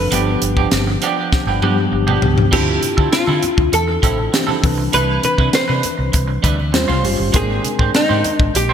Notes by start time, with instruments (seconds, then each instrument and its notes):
Already playing: tine electric piano F3 C4 D4 A4, hollow-body jazz guitar B4
0.11 fretless electric bass G1, clean electric guitar F3 B3 D4 G4, tine electric piano F3 B3 D4 G4, closed hi-hat
0.42 fretless electric bass G1, muted clean electric guitar stroke, closed hi-hat
0.57 clean electric guitar F3 B3 D4 G4, kick
0.71 fretless electric bass G1, muted clean electric guitar stroke, snare, closed hi-hat
0.87 muted clean electric guitar stroke
1.02 clean electric guitar F3 B3 D4 G4, closed hi-hat
1.17 clean electric guitar F3 B3 D4 G4
1.32 muted clean electric guitar stroke, kick, snare
1.46 fretless electric bass G1, clean electric guitar F3 B3 D4 G4
1.62 fretless electric bass G2, clean electric guitar F3 B3 D4 G4, tine electric piano F3 B3 D4 G4, high tom
1.77 muted clean electric guitar stroke
1.92 fretless electric bass G1, muted clean electric guitar stroke
2.07 clean electric guitar F3 B3 D4 G4, mid tom
2.22 fretless electric bass C#2, tine electric piano F3 B3 D4 G4, muted clean electric guitar stroke, floor tom
2.36 muted clean electric guitar stroke, floor tom
2.51 fretless electric bass D2, clean electric guitar F3 C4 E4 A4, tine electric piano C4 D4 E4 F4, hollow-body jazz guitar G4, kick, crash, low conga
2.81 muted clean electric guitar stroke, closed hi-hat, high conga
2.97 fretless electric bass D3, clean electric guitar F3 C4 E4 A4, kick
3.12 hollow-body jazz guitar F4, muted clean electric guitar stroke, muted fretless electric bass stroke, snare, closed hi-hat, muted conga
3.27 fretless electric bass D3, clean electric guitar F3 C4 E4 A4, high conga
3.43 muted clean electric guitar stroke, closed hi-hat, low conga
3.57 fretless electric bass D2, muted clean electric guitar stroke, kick
3.72 fretless electric bass E2, hollow-body jazz guitar A4, muted clean electric guitar stroke, closed hi-hat, muted conga
3.88 muted clean electric guitar stroke
4.02 fretless electric bass A1, clean electric guitar F3 C4 E4 A4, kick, closed hi-hat, muted conga, high conga
4.18 muted clean electric guitar stroke, high conga
4.33 tine electric piano E3 C4 D4 G4, muted clean electric guitar stroke, snare, closed hi-hat, muted conga
4.47 clean electric guitar F3 C4 E4 A4, high conga
4.63 fretless electric bass C2, tine electric piano E3 C4 D4 B4, muted clean electric guitar stroke, kick, open hi-hat, muted conga, low conga
4.78 muted clean electric guitar stroke
4.93 fretless electric bass C2, clean electric guitar G3 D4 E4 B4, hollow-body jazz guitar B4, closed hi-hat, low conga
5.23 hollow-body jazz guitar B4, muted clean electric guitar stroke, closed hi-hat, muted conga, high conga
5.38 fretless electric bass C3, clean electric guitar G3 D4 E4 B4, kick
5.53 hollow-body jazz guitar C5, muted clean electric guitar stroke, muted fretless electric bass stroke, snare, closed hi-hat, muted conga
5.68 fretless electric bass C3, clean electric guitar G3 D4 E4 B4, high conga
5.83 muted clean electric guitar stroke, closed hi-hat, low conga
5.98 fretless electric bass C2, muted clean electric guitar stroke
6.12 fretless electric bass C2, muted clean electric guitar stroke, kick, closed hi-hat, muted conga
6.28 muted clean electric guitar stroke
6.43 fretless electric bass D2, clean electric guitar G3 D4 E4 B4, kick, closed hi-hat, muted conga, high conga
6.57 muted clean electric guitar stroke, high conga
6.72 fretless electric bass D#2, tine electric piano G3 C#4 F4 C5, muted clean electric guitar stroke, snare, closed hi-hat, muted conga
6.88 fretless electric bass C2, clean electric guitar G3 C#4 F4 C5, high conga
7.03 fretless electric bass F#1, tine electric piano G3 C#4 F4 G4, muted clean electric guitar stroke, open hi-hat, muted conga, low conga
7.18 fretless electric bass G1, muted clean electric guitar stroke
7.33 fretless electric bass G#1, tine electric piano G#3 C4 D4 A#4, clean electric guitar A#3 D4 G4 C5, hollow-body jazz guitar G#4, kick, closed hi-hat, muted conga, low conga
7.64 muted clean electric guitar stroke, closed hi-hat, muted conga, high conga
7.79 fretless electric bass G#2, clean electric guitar A#3 D4 G4 C5, kick
7.94 hollow-body jazz guitar D#4, muted clean electric guitar stroke, muted fretless electric bass stroke, snare, closed hi-hat, muted conga
8.09 fretless electric bass G#2, clean electric guitar A#3 D4 G4 C5, high conga
8.24 muted clean electric guitar stroke, closed hi-hat, low conga
8.36 fretless electric bass G#1, hollow-body jazz guitar D4, muted clean electric guitar stroke, kick
8.54 fretless electric bass A#1, hollow-body jazz guitar G4, muted clean electric guitar stroke, closed hi-hat, muted conga
8.69 clean electric guitar D4 G4 C5